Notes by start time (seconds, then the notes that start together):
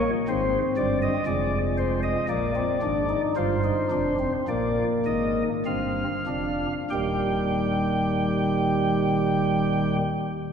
Already playing: C#5
0.28 G#1 G#2 C4 C5
0.77 G1 G2 D5
1.02 D#5
1.26 F1 F2 G#3 D5
1.78 C5
2.03 D#5
2.29 A#1 A#2 A#3 D5
2.56 C4
2.82 G#1 G#2 D4
3.10 D#4
3.36 G1 G2 F4 C5
3.64 D#4
3.91 F1 F2 D4
4.19 C4
4.48 A#1 A#2 A#3 D5
5.06 G#1 G#2 D#5
5.66 G1 G2 C4 F5
6.27 F1 F2 D4
6.90 D#1 D#2 D#3 G3 G4 G5